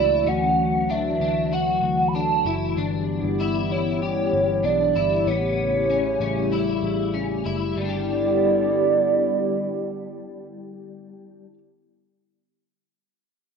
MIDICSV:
0, 0, Header, 1, 5, 480
1, 0, Start_track
1, 0, Tempo, 625000
1, 207, Time_signature, 4, 2, 24, 8
1, 10421, End_track
2, 0, Start_track
2, 0, Title_t, "Soft synth lead"
2, 0, Program_c, 0, 80
2, 0, Note_on_c, 0, 74, 88
2, 216, Note_on_c, 0, 78, 90
2, 227, Note_off_c, 0, 74, 0
2, 699, Note_on_c, 0, 76, 82
2, 710, Note_off_c, 0, 78, 0
2, 1179, Note_on_c, 0, 78, 94
2, 1191, Note_off_c, 0, 76, 0
2, 1599, Note_on_c, 0, 83, 60
2, 1610, Note_off_c, 0, 78, 0
2, 1646, Note_on_c, 0, 81, 97
2, 1658, Note_off_c, 0, 83, 0
2, 2007, Note_off_c, 0, 81, 0
2, 2849, Note_on_c, 0, 73, 94
2, 3573, Note_on_c, 0, 74, 96
2, 3585, Note_off_c, 0, 73, 0
2, 4049, Note_on_c, 0, 73, 102
2, 4061, Note_off_c, 0, 74, 0
2, 5488, Note_off_c, 0, 73, 0
2, 5975, Note_on_c, 0, 74, 93
2, 8474, Note_off_c, 0, 74, 0
2, 10421, End_track
3, 0, Start_track
3, 0, Title_t, "Clean electric guitar"
3, 0, Program_c, 1, 27
3, 0, Note_on_c, 1, 64, 67
3, 204, Note_on_c, 1, 61, 77
3, 207, Note_off_c, 1, 64, 0
3, 685, Note_off_c, 1, 61, 0
3, 689, Note_on_c, 1, 62, 72
3, 922, Note_off_c, 1, 62, 0
3, 932, Note_on_c, 1, 62, 65
3, 1169, Note_off_c, 1, 62, 0
3, 1172, Note_on_c, 1, 66, 67
3, 1650, Note_off_c, 1, 66, 0
3, 1650, Note_on_c, 1, 62, 66
3, 1889, Note_off_c, 1, 62, 0
3, 1889, Note_on_c, 1, 64, 73
3, 2128, Note_off_c, 1, 64, 0
3, 2131, Note_on_c, 1, 62, 73
3, 2609, Note_off_c, 1, 62, 0
3, 2611, Note_on_c, 1, 64, 69
3, 2841, Note_off_c, 1, 64, 0
3, 2851, Note_on_c, 1, 64, 74
3, 3085, Note_off_c, 1, 64, 0
3, 3088, Note_on_c, 1, 67, 62
3, 3563, Note_on_c, 1, 62, 62
3, 3567, Note_off_c, 1, 67, 0
3, 3805, Note_off_c, 1, 62, 0
3, 3806, Note_on_c, 1, 64, 72
3, 4047, Note_off_c, 1, 64, 0
3, 4048, Note_on_c, 1, 59, 67
3, 4526, Note_off_c, 1, 59, 0
3, 4529, Note_on_c, 1, 61, 65
3, 4758, Note_off_c, 1, 61, 0
3, 4767, Note_on_c, 1, 61, 64
3, 5007, Note_off_c, 1, 61, 0
3, 5008, Note_on_c, 1, 64, 58
3, 5482, Note_on_c, 1, 61, 57
3, 5488, Note_off_c, 1, 64, 0
3, 5724, Note_off_c, 1, 61, 0
3, 5725, Note_on_c, 1, 64, 62
3, 5965, Note_on_c, 1, 55, 58
3, 5966, Note_off_c, 1, 64, 0
3, 5996, Note_on_c, 1, 59, 50
3, 6023, Note_off_c, 1, 59, 0
3, 6026, Note_on_c, 1, 62, 57
3, 6058, Note_on_c, 1, 67, 52
3, 8795, Note_off_c, 1, 55, 0
3, 8856, Note_off_c, 1, 62, 0
3, 8888, Note_off_c, 1, 67, 0
3, 10421, End_track
4, 0, Start_track
4, 0, Title_t, "Ambient pad"
4, 0, Program_c, 2, 92
4, 0, Note_on_c, 2, 52, 78
4, 0, Note_on_c, 2, 54, 73
4, 0, Note_on_c, 2, 57, 68
4, 0, Note_on_c, 2, 66, 83
4, 2096, Note_off_c, 2, 57, 0
4, 2098, Note_off_c, 2, 66, 0
4, 2099, Note_off_c, 2, 54, 0
4, 2129, Note_on_c, 2, 59, 65
4, 2130, Note_on_c, 2, 55, 68
4, 2131, Note_on_c, 2, 67, 82
4, 2132, Note_on_c, 2, 64, 71
4, 4019, Note_off_c, 2, 52, 0
4, 4029, Note_off_c, 2, 55, 0
4, 4029, Note_off_c, 2, 59, 0
4, 4030, Note_off_c, 2, 64, 0
4, 4045, Note_on_c, 2, 49, 79
4, 4048, Note_on_c, 2, 57, 68
4, 4052, Note_on_c, 2, 55, 72
4, 4052, Note_on_c, 2, 64, 63
4, 5938, Note_off_c, 2, 67, 0
4, 5947, Note_off_c, 2, 49, 0
4, 5948, Note_off_c, 2, 57, 0
4, 5950, Note_off_c, 2, 55, 0
4, 5950, Note_off_c, 2, 64, 0
4, 5971, Note_on_c, 2, 50, 71
4, 5973, Note_on_c, 2, 55, 65
4, 5973, Note_on_c, 2, 59, 66
4, 5974, Note_on_c, 2, 64, 68
4, 5974, Note_on_c, 2, 67, 82
4, 8473, Note_off_c, 2, 50, 0
4, 8473, Note_off_c, 2, 55, 0
4, 8473, Note_off_c, 2, 59, 0
4, 8474, Note_off_c, 2, 64, 0
4, 8474, Note_off_c, 2, 67, 0
4, 10421, End_track
5, 0, Start_track
5, 0, Title_t, "Picked electric bass"
5, 0, Program_c, 3, 34
5, 0, Note_on_c, 3, 37, 71
5, 197, Note_off_c, 3, 37, 0
5, 212, Note_on_c, 3, 38, 86
5, 899, Note_off_c, 3, 38, 0
5, 925, Note_on_c, 3, 38, 83
5, 1382, Note_off_c, 3, 38, 0
5, 1403, Note_on_c, 3, 38, 73
5, 1861, Note_off_c, 3, 38, 0
5, 1882, Note_on_c, 3, 30, 59
5, 2112, Note_off_c, 3, 30, 0
5, 2124, Note_on_c, 3, 31, 81
5, 2467, Note_off_c, 3, 31, 0
5, 2482, Note_on_c, 3, 31, 81
5, 3294, Note_off_c, 3, 31, 0
5, 3327, Note_on_c, 3, 31, 74
5, 3555, Note_off_c, 3, 31, 0
5, 3564, Note_on_c, 3, 35, 68
5, 3793, Note_off_c, 3, 35, 0
5, 3809, Note_on_c, 3, 31, 69
5, 4036, Note_off_c, 3, 31, 0
5, 4046, Note_on_c, 3, 33, 97
5, 4735, Note_off_c, 3, 33, 0
5, 4764, Note_on_c, 3, 33, 70
5, 5221, Note_off_c, 3, 33, 0
5, 5243, Note_on_c, 3, 33, 69
5, 5701, Note_off_c, 3, 33, 0
5, 5726, Note_on_c, 3, 30, 55
5, 5954, Note_off_c, 3, 30, 0
5, 5960, Note_on_c, 3, 31, 78
5, 8790, Note_off_c, 3, 31, 0
5, 10421, End_track
0, 0, End_of_file